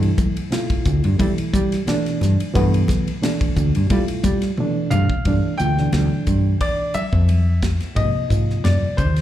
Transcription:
0.00 0.10 G2 medium
0.00 0.38 B2 medium
0.00 0.38 E3 medium
0.00 0.39 A3 medium
0.00 0.39 E4 medium
0.00 ride medium
0.18 kick medium
0.18 hi-hat pedal medium
0.18 high conga medium
0.37 ride medium
0.51 1.06 B2 medium
0.51 1.06 A3 medium
0.51 1.06 E4 medium
0.51 1.07 F4 medium
0.51 snare loud
0.51 ride medium
0.70 kick medium
0.70 ride medium
0.85 1.00 D2 medium
0.85 kick medium
0.85 hi-hat pedal medium
0.85 muted conga soft
1.04 1.17 G2 medium
1.04 ride medium
1.18 1.73 B2 medium
1.18 1.73 E3 medium
1.18 1.33 G3 loud
1.18 1.74 A3 medium
1.18 1.74 E4 medium
1.18 kick medium
1.18 ride medium
1.38 muted fretless electric bass stroke soft
1.38 ride medium
1.53 1.80 G3 loud
1.53 kick medium
1.53 hi-hat pedal medium
1.53 muted conga soft
1.72 snare soft
1.72 ride medium
1.86 2.41 B2 medium
1.86 2.42 E3 medium
1.86 2.42 A3 medium
1.86 2.42 D4 medium
1.86 snare medium
1.86 ride medium
1.86 high conga medium
2.06 snare soft
2.06 ride soft
2.21 2.35 G2 medium
2.21 snare soft
2.21 hi-hat pedal medium
2.21 high conga medium
2.40 ride medium
2.54 2.82 G2 loud
2.54 3.09 B2 loud
2.54 3.09 E3 medium
2.54 3.09 A3 medium
2.54 3.10 B3 loud
2.54 kick medium
2.54 ride medium
2.54 muted conga soft
2.74 ride medium
2.88 kick medium
2.88 snare soft
2.88 hi-hat pedal medium
2.88 high conga medium
3.08 ride medium
3.21 3.76 B2 medium
3.21 3.77 E3 medium
3.21 3.77 A3 medium
3.21 3.77 D4 medium
3.21 snare loud
3.21 ride medium
3.41 kick medium
3.41 ride medium
3.56 3.70 D2 medium
3.56 kick medium
3.56 hi-hat pedal medium
3.56 muted conga soft
3.75 3.88 G2 medium
3.75 ride medium
3.90 4.44 B2 medium
3.90 4.04 G3 medium
3.90 4.45 A3 medium
3.90 4.45 E4 medium
3.90 4.45 F4 medium
3.90 kick medium
3.90 ride medium
3.90 muted conga soft
3.90 high conga medium
4.08 muted fretless electric bass stroke soft
4.08 ride medium
4.23 4.50 G3 medium
4.23 kick medium
4.23 hi-hat pedal medium
4.23 muted conga soft
4.23 low conga medium
4.42 snare soft
4.42 ride medium
4.58 5.12 B2 medium
4.58 5.13 E3 medium
4.58 5.13 A3 medium
4.58 5.13 D4 medium
4.58 high tom medium
4.90 5.06 G2 medium
4.90 5.61 F5 medium
4.90 hi-hat pedal medium
4.90 mid tom medium
4.90 high conga medium
5.10 kick medium
5.25 5.40 G2 medium
5.25 5.53 B2 medium
5.25 5.53 E3 medium
5.25 5.53 A3 medium
5.25 5.54 D4 medium
5.25 kick medium
5.25 ride medium
5.25 muted conga soft
5.58 5.86 D2 medium
5.58 5.73 B2 medium
5.58 5.73 E3 medium
5.58 5.74 A3 medium
5.58 5.74 F4 medium
5.58 6.22 G5 medium
5.58 hi-hat pedal medium
5.58 ride medium
5.78 5.90 B2 medium
5.78 5.90 E3 medium
5.78 5.91 A3 medium
5.78 5.91 D4 medium
5.78 snare soft
5.93 6.07 D2 medium
5.93 7.01 B2 medium
5.93 7.01 E3 soft
5.93 7.02 A3 medium
5.93 7.02 D4 medium
5.93 snare medium
5.93 ride medium
5.93 high conga medium
6.13 muted fretless electric bass stroke soft
6.27 6.54 G2 medium
6.27 kick medium
6.27 hi-hat pedal medium
6.27 ride medium
6.61 6.92 D5 medium
6.61 kick medium
6.61 ride medium
6.61 muted conga soft
6.94 7.99 E5 loud
6.94 hi-hat pedal medium
6.94 ride medium
6.94 muted conga soft
6.94 high conga medium
7.12 7.78 F2 medium
7.12 kick medium
7.29 ride medium
7.29 high conga medium
7.62 kick medium
7.62 snare medium
7.62 hi-hat pedal medium
7.62 ride medium
7.80 snare soft
7.80 ride soft
7.95 8.10 G#2 medium
7.95 8.23 C3 medium
7.95 8.23 F3 medium
7.95 8.24 A#3 medium
7.95 8.24 D#4 medium
7.95 8.66 D#5 medium
7.95 kick medium
7.95 ride medium
7.95 muted conga soft
8.29 8.57 G#2 medium
8.29 9.21 C3 medium
8.29 9.21 F3 soft
8.29 9.21 A#3 soft
8.29 9.21 F4 medium
8.29 kick medium
8.29 hi-hat pedal medium
8.29 ride medium
8.50 snare soft
8.64 8.78 F#2 medium
8.64 8.99 D5 medium
8.64 snare medium
8.64 ride medium
8.64 high conga medium
8.82 muted fretless electric bass stroke soft
8.97 9.21 D#2 medium
8.97 9.21 C5 medium
8.97 kick medium
8.97 hi-hat pedal medium
8.97 ride medium
8.97 muted conga soft
9.16 snare soft
9.16 ride medium

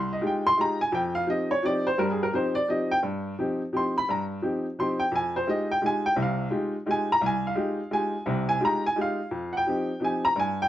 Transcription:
0.00 0.18 C2 medium
0.00 0.10 C6 loud
0.13 0.23 D#5 medium
0.21 0.45 G#3 medium
0.21 0.45 D#4 soft
0.21 0.45 F4 medium
0.21 0.45 G4 medium
0.27 0.46 G5 medium
0.47 0.58 C6 loud
0.57 0.80 G#3 soft
0.57 0.81 D#4 soft
0.57 0.81 F4 soft
0.57 0.81 G4 medium
0.57 0.80 A#5 medium
0.81 0.93 G#5 medium
0.92 1.22 F2 medium
0.92 1.22 F3 medium
0.92 1.15 G5 medium
1.15 1.27 F5 medium
1.27 1.50 F3 medium
1.27 1.51 C4 soft
1.27 1.51 D#4 soft
1.27 1.51 G4 medium
1.27 1.50 D#5 medium
1.51 1.63 C#5 medium
1.63 1.86 F3 medium
1.63 1.86 C4 medium
1.63 1.86 D#4 soft
1.63 1.86 G4 medium
1.63 1.85 D5 medium
1.87 1.98 C5 medium
1.98 2.28 G2 medium
1.98 2.27 G3 medium
1.98 2.09 A#4 medium
2.11 2.21 G#4 medium
2.23 2.33 A#4 medium
2.32 2.55 F3 medium
2.32 2.56 C4 medium
2.32 2.56 D#4 medium
2.32 2.56 G4 medium
2.32 2.55 C5 medium
2.55 2.67 D5 medium
2.68 2.91 F3 medium
2.68 2.91 C4 soft
2.68 2.91 D#4 soft
2.68 2.91 G4 medium
2.68 2.90 D#5 medium
2.91 2.98 G5 loud
3.03 3.32 G2 medium
3.39 3.61 F3 medium
3.39 3.61 C4 soft
3.39 3.61 D#4 medium
3.39 3.61 G4 medium
3.73 3.96 F3 medium
3.73 3.96 C4 soft
3.73 3.96 D#4 soft
3.73 3.96 G4 medium
3.73 3.96 C6 medium
3.98 4.08 B5 medium
4.09 4.38 G2 medium
4.09 4.23 A#5 medium
4.42 4.65 F3 soft
4.42 4.65 C4 medium
4.42 4.65 D#4 soft
4.42 4.66 G4 medium
4.79 5.01 F3 medium
4.79 5.01 C4 medium
4.79 5.01 D#4 medium
4.79 5.01 G4 medium
4.79 5.00 C6 medium
5.00 5.12 G5 medium
5.12 5.42 F2 medium
5.12 5.35 G#5 medium
5.36 5.47 C5 medium
5.47 5.70 G#3 medium
5.47 5.71 D#4 soft
5.47 5.70 F4 soft
5.47 5.71 G4 medium
5.47 5.69 D#5 medium
5.71 5.83 G5 medium
5.82 6.05 G#3 medium
5.82 6.05 D#4 soft
5.82 6.05 F4 soft
5.82 6.05 G4 medium
5.86 6.05 G#5 medium
6.06 6.17 G5 loud
6.16 6.46 C2 medium
6.16 6.46 C3 medium
6.22 6.52 F5 medium
6.50 6.74 G#3 medium
6.50 6.74 D#4 medium
6.50 6.74 F4 medium
6.50 6.74 G4 medium
6.86 7.10 G#3 medium
6.86 7.09 D#4 soft
6.86 7.09 F4 soft
6.86 7.10 G4 medium
6.91 7.10 G#5 medium
7.12 7.23 A#5 loud
7.21 7.51 C2 medium
7.26 7.45 G#5 medium
7.47 7.90 F5 medium
7.55 7.79 G#3 medium
7.55 7.79 D#4 medium
7.55 7.79 F4 soft
7.55 7.79 G4 medium
7.91 8.14 G#3 medium
7.91 8.15 D#4 soft
7.91 8.15 F4 medium
7.91 8.15 G4 medium
7.91 8.45 G#5 medium
8.26 8.56 C2 medium
8.26 8.56 C3 medium
8.49 8.61 G#5 loud
8.61 8.84 G#3 medium
8.61 8.84 D#4 medium
8.61 8.84 F4 medium
8.61 8.84 G4 medium
8.65 8.84 A#5 loud
8.86 8.97 G#5 medium
8.96 9.19 G#3 medium
8.96 9.19 D#4 medium
8.96 9.19 F4 medium
8.96 9.19 G4 medium
9.01 9.52 F5 medium
9.31 9.61 F2 medium
9.57 9.99 G5 medium
9.67 9.89 F3 medium
9.67 9.90 C4 soft
9.67 9.90 D#4 medium
9.67 9.90 G4 medium
10.00 10.23 F3 medium
10.00 10.24 C4 soft
10.00 10.24 D#4 medium
10.00 10.24 G4 medium
10.04 10.24 G#5 medium
10.25 10.36 A#5 loud
10.36 10.66 G2 medium
10.36 10.59 G#5 medium
10.62 10.68 G5 loud

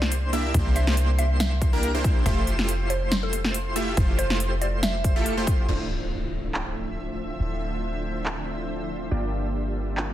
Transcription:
0.00 0.52 C2 medium
0.00 0.31 A#3 medium
0.00 0.31 D4 medium
0.00 0.31 E4 medium
0.00 0.31 G4 medium
0.00 0.31 C5 loud
0.00 0.31 C5 medium
0.00 snare medium
0.12 closed hi-hat medium
0.33 0.52 A#3 medium
0.33 0.52 D4 medium
0.33 0.52 E4 medium
0.33 0.52 G4 medium
0.33 0.52 E5 medium
0.33 closed hi-hat medium
0.54 2.24 C2 medium
0.54 0.85 A#3 medium
0.54 0.85 D4 medium
0.54 0.85 C5 medium
0.54 kick loud
0.54 closed hi-hat medium
0.76 1.00 E5 loud
0.76 closed hi-hat medium
0.87 1.70 A#3 medium
0.87 1.70 D4 medium
0.87 1.70 E4 medium
0.87 1.70 G4 medium
0.87 1.70 C5 loud
0.87 1.70 C5 medium
0.87 snare medium
0.97 closed hi-hat medium
1.19 1.32 E5 medium
1.19 closed hi-hat medium
1.40 2.18 E5 medium
1.40 snare loud
1.40 closed hi-hat medium
1.62 kick medium
1.62 closed hi-hat medium
1.73 1.92 A#3 medium
1.73 1.92 D4 medium
1.73 1.92 E4 medium
1.73 1.92 G4 medium
1.73 1.92 A#4 loud
1.83 closed hi-hat medium
1.94 2.23 A#3 medium
1.94 2.23 D4 medium
1.94 2.23 E4 medium
1.94 2.23 G4 medium
1.94 2.23 C5 loud
2.04 kick loud
2.04 closed hi-hat medium
2.26 3.95 F1 medium
2.26 2.56 A3 loud
2.26 2.56 E4 medium
2.26 2.56 F4 medium
2.26 2.56 G4 medium
2.26 2.56 C5 loud
2.26 2.39 E5 loud
2.26 kick loud
2.26 closed hi-hat medium
2.47 closed hi-hat medium
2.59 3.73 A3 medium
2.59 3.73 E4 medium
2.59 3.73 F4 medium
2.59 3.73 G4 medium
2.59 3.73 C5 loud
2.59 snare medium
2.69 closed hi-hat medium
2.90 3.09 C5 loud
2.90 closed hi-hat medium
3.12 snare loud
3.12 closed hi-hat medium
3.23 3.41 A4 loud
3.33 closed hi-hat medium
3.45 snare medium
3.54 closed hi-hat medium
3.76 3.95 A3 medium
3.76 3.95 E4 medium
3.76 3.95 F4 medium
3.76 3.95 G4 medium
3.76 3.95 E5 medium
3.76 closed hi-hat medium
3.97 5.67 F1 medium
3.97 4.27 A3 medium
3.97 4.27 E4 medium
3.97 4.27 F4 medium
3.97 4.27 G4 medium
3.97 4.27 C5 medium
3.97 kick loud
3.97 closed hi-hat medium
4.19 4.43 C5 medium
4.19 closed hi-hat medium
4.30 5.13 A3 medium
4.30 5.13 E4 medium
4.30 5.13 F4 medium
4.30 5.13 G4 medium
4.30 5.13 C5 medium
4.30 snare medium
4.40 closed hi-hat medium
4.61 4.74 D5 medium
4.61 closed hi-hat medium
4.83 5.61 E5 medium
4.83 snare loud
4.83 closed hi-hat medium
5.04 kick medium
5.04 closed hi-hat medium
5.16 5.35 A3 medium
5.16 5.35 E4 medium
5.16 5.35 F4 medium
5.16 5.35 G4 medium
5.16 5.35 A4 loud
5.26 closed hi-hat medium
5.37 5.66 A3 medium
5.37 5.66 E4 medium
5.37 5.66 F4 medium
5.37 5.66 G4 medium
5.37 5.66 C5 medium
5.37 5.66 C5 loud
5.47 kick loud
5.47 closed hi-hat medium
5.69 7.38 D1 medium
5.69 9.08 D3 medium
5.69 9.08 F3 medium
5.69 9.09 A3 medium
5.69 9.08 C4 medium
5.69 9.09 D4 medium
5.69 9.09 E4 medium
5.69 9.09 F4 medium
5.69 9.09 C5 medium
5.69 9.08 E5 medium
5.69 crash medium
5.69 impact medium
6.54 clap loud
7.40 9.10 D1 medium
8.26 clap medium
9.11 10.13 G1 medium
9.11 10.13 D3 medium
9.11 10.13 G3 medium
9.11 10.13 A#3 medium
9.11 10.13 D4 medium
9.11 10.13 F4 medium
9.11 10.13 G4 medium
9.11 10.13 D5 medium
9.97 clap loud

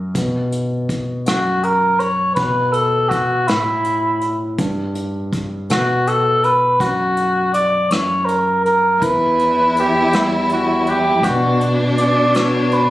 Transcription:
0.00 0.12 F#2 soft
0.15 1.24 B2 soft
0.15 kick medium
0.15 closed hi-hat medium
0.52 closed hi-hat soft
0.89 kick soft
0.89 closed hi-hat soft
1.26 2.34 F#2 medium
1.26 1.65 F#4 medium
1.26 cross-stick medium
1.26 closed hi-hat medium
1.63 2.01 A#4 medium
1.63 closed hi-hat soft
2.00 2.34 C#5 medium
2.00 closed hi-hat soft
2.35 3.45 B2 soft
2.35 2.74 B4 medium
2.35 kick medium
2.35 closed hi-hat soft
2.72 3.10 A4 medium
2.72 closed hi-hat soft
3.09 3.49 F#4 medium
3.09 kick soft
3.09 closed hi-hat soft
3.48 4.56 A2 medium
3.48 4.31 E4 medium
3.48 cross-stick medium
3.48 closed hi-hat soft
3.84 closed hi-hat soft
4.21 closed hi-hat soft
4.58 5.66 G2 soft
4.58 kick medium
4.58 closed hi-hat medium
4.95 closed hi-hat soft
5.33 kick medium
5.33 closed hi-hat soft
5.70 6.77 B2 medium
5.70 6.09 F#4 medium
5.70 cross-stick medium
5.70 closed hi-hat medium
6.07 6.46 A4 medium
6.07 closed hi-hat soft
6.44 6.82 B4 medium
6.44 closed hi-hat soft
6.80 7.88 F#2 soft
6.80 7.53 F#4 medium
6.80 kick medium
6.80 closed hi-hat medium
7.17 closed hi-hat soft
7.54 7.92 D5 medium
7.54 closed hi-hat soft
7.90 8.98 F#2 medium
7.90 8.27 C#5 medium
7.90 cross-stick medium
7.90 closed hi-hat medium
8.25 8.63 A#4 medium
8.25 closed hi-hat soft
8.64 9.05 A#4 medium
8.64 closed hi-hat soft
9.01 11.24 E2 medium
9.01 11.19 E3 soft
9.01 11.25 E4 medium
9.01 9.81 B4 medium
9.01 kick medium
9.01 closed hi-hat medium
9.39 closed hi-hat soft
9.77 10.17 G4 medium
9.77 closed hi-hat soft
10.13 11.21 G3 soft
10.13 11.20 E4 soft
10.13 10.51 E4 medium
10.13 11.20 F#5 soft
10.13 cross-stick medium
10.13 closed hi-hat medium
10.49 10.91 F#4 medium
10.49 closed hi-hat soft
10.87 11.25 G4 medium
10.87 closed hi-hat soft
11.23 12.90 B2 medium
11.23 12.90 B2 soft
11.23 12.90 D4 medium
11.23 11.70 F#4 medium
11.23 kick medium
11.23 closed hi-hat medium
11.61 closed hi-hat soft
11.97 12.37 D5 medium
11.97 closed hi-hat soft
12.34 12.90 B3 soft
12.34 12.90 D4 soft
12.34 12.90 F#4 soft
12.34 12.75 C#5 medium
12.34 cross-stick medium
12.34 closed hi-hat medium
12.71 12.90 B4 medium
12.71 closed hi-hat soft

